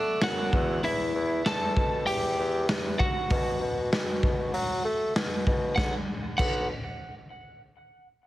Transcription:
0.00 0.22 F#3 medium
0.00 0.18 A3 medium
0.00 0.22 B3 medium
0.00 0.53 D4 medium
0.00 0.53 F#4 medium
0.21 0.49 F#2 medium
0.21 0.53 B3 medium
0.21 0.80 F#4 medium
0.21 0.86 F#5 loud
0.21 snare loud
0.21 open hi-hat medium
0.53 0.83 E2 medium
0.53 0.80 E2 loud
0.53 kick medium
0.83 1.11 E2 medium
0.83 1.41 E4 medium
0.83 1.47 E5 medium
0.83 open hi-hat medium
1.14 1.42 E2 medium
1.45 1.73 E2 loud
1.45 2.04 A4 medium
1.45 2.06 A5 medium
1.45 snare loud
1.45 open hi-hat medium
1.77 2.04 B2 medium
1.77 kick medium
2.06 2.35 E2 medium
2.06 2.96 G4 medium
2.06 2.95 G5 medium
2.06 open hi-hat medium
2.39 2.66 E2 loud
2.69 3.00 E2 medium
2.69 snare loud
2.69 open hi-hat medium
2.99 5.12 F#4 medium
2.99 5.11 F#5 medium
2.99 kick medium
3.30 3.58 B2 medium
3.30 kick loud
3.30 open hi-hat medium
3.61 3.89 B2 medium
3.92 4.20 B2 medium
3.92 snare loud
3.92 open hi-hat medium
4.23 4.51 B2 medium
4.23 kick loud
4.54 4.81 F#3 medium
4.54 open hi-hat medium
4.85 5.12 A3 loud
5.15 5.43 B2 medium
5.15 snare loud
5.15 open hi-hat medium
5.47 5.74 B2 loud
5.47 kick medium
5.76 5.95 B1 medium
5.76 5.94 F#5 medium
5.76 kick loud
5.76 snare medium
6.38 6.68 B1 loud
6.38 6.67 F#5 medium
6.38 kick loud
6.38 crash medium

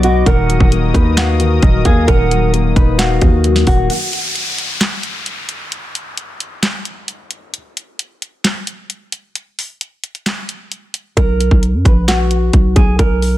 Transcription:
0.00 0.24 B1 loud
0.00 0.28 B2 medium
0.00 0.28 F#3 medium
0.00 0.04 B3 medium
0.00 0.23 B3 medium
0.00 0.26 B3 medium
0.00 0.26 D#4 medium
0.00 0.26 F#4 loud
0.00 3.86 F#4 medium
0.00 0.23 D#5 medium
0.00 0.25 D#5 medium
0.00 0.24 D6 loud
0.00 closed hi-hat medium
0.04 0.24 F#4 medium
0.26 0.59 D#1 loud
0.26 1.38 D#3 loud
0.26 3.86 A#4 medium
0.26 0.69 A#4 loud
0.26 3.86 D#5 medium
0.26 0.69 F#5 loud
0.26 3.86 D#6 loud
0.26 kick loud
0.26 closed hi-hat medium
0.49 1.61 F#3 medium
0.49 closed hi-hat medium
0.60 0.93 D#1 loud
0.60 kick medium
0.72 1.84 A#3 medium
0.72 closed hi-hat medium
0.94 1.60 D#2 loud
0.94 2.08 D#4 medium
0.94 1.14 B4 medium
0.94 kick medium
0.94 closed hi-hat medium
1.17 1.82 F#4 medium
1.17 2.31 F5 loud
1.17 snare loud
1.17 clap loud
1.17 closed hi-hat medium
1.40 2.07 D#3 medium
1.40 closed hi-hat medium
1.62 1.85 D#1 loud
1.62 2.29 F#3 medium
1.62 1.84 D#5 medium
1.62 kick loud
1.62 closed hi-hat medium
1.85 2.07 D#2 loud
1.85 2.52 A#3 medium
1.85 2.05 G#4 medium
1.85 2.07 F5 medium
1.85 kick loud
1.85 closed hi-hat medium
2.08 2.74 D#1 loud
2.08 3.20 D#3 medium
2.08 2.51 A#4 loud
2.08 2.51 F#5 loud
2.08 kick loud
2.08 closed hi-hat medium
2.31 3.43 F#3 medium
2.31 closed hi-hat medium
2.53 3.66 A#3 medium
2.53 closed hi-hat medium
2.76 3.20 D#1 loud
2.76 3.90 D#4 medium
2.76 2.96 B4 medium
2.76 kick medium
2.76 closed hi-hat medium
2.98 3.63 F#4 medium
2.98 3.90 F5 loud
2.98 snare loud
2.98 clap loud
2.98 closed hi-hat medium
3.21 3.65 D#2 loud
3.21 3.90 D#3 medium
3.21 kick medium
3.21 closed hi-hat medium
3.44 3.90 F#3 medium
3.44 closed hi-hat medium
3.56 snare medium
3.67 3.89 D#1 loud
3.67 3.90 A#3 medium
3.67 3.87 F#4 medium
3.67 kick loud
3.67 open hi-hat medium
3.90 closed hi-hat medium
3.90 downlifter medium
4.13 closed hi-hat medium
4.36 closed hi-hat medium
4.58 closed hi-hat medium
4.81 snare loud
4.81 clap loud
4.81 closed hi-hat medium
5.03 closed hi-hat medium
5.26 closed hi-hat medium
5.49 closed hi-hat medium
5.72 closed hi-hat medium
5.95 closed hi-hat medium
6.17 closed hi-hat medium
6.40 closed hi-hat medium
6.63 snare loud
6.63 clap loud
6.63 closed hi-hat medium
6.85 closed hi-hat medium
7.08 closed hi-hat medium
7.31 closed hi-hat medium
7.54 closed hi-hat medium
7.77 closed hi-hat medium
7.99 closed hi-hat medium
8.22 closed hi-hat medium
8.45 snare loud
8.45 clap medium
8.45 closed hi-hat medium
8.67 closed hi-hat medium
8.90 closed hi-hat medium
9.12 closed hi-hat medium
9.35 closed hi-hat medium
9.59 open hi-hat medium
9.81 closed hi-hat medium
10.04 closed hi-hat medium
10.15 closed hi-hat soft
10.26 snare loud
10.26 clap loud
10.26 closed hi-hat medium
10.49 closed hi-hat medium
10.72 closed hi-hat medium
10.94 closed hi-hat medium
11.17 11.50 B1 loud
11.17 11.60 A#4 loud
11.17 kick loud
11.17 closed hi-hat medium
11.40 closed hi-hat medium
11.51 11.75 B1 loud
11.51 kick medium
11.63 closed hi-hat medium
11.74 11.85 F#2 loud
11.85 12.51 A#1 loud
11.85 12.05 B4 medium
11.85 kick medium
11.85 closed hi-hat medium
12.08 12.72 F#4 medium
12.08 snare loud
12.08 clap loud
12.08 closed hi-hat medium
12.31 closed hi-hat medium
12.53 12.75 B1 loud
12.53 kick loud
12.53 closed hi-hat medium
12.76 12.98 B1 loud
12.76 12.96 G#4 medium
12.76 kick loud
12.76 closed hi-hat medium
12.99 13.38 B1 loud
12.99 13.38 A#4 loud
12.99 kick loud
12.99 closed hi-hat medium
13.22 open hi-hat medium

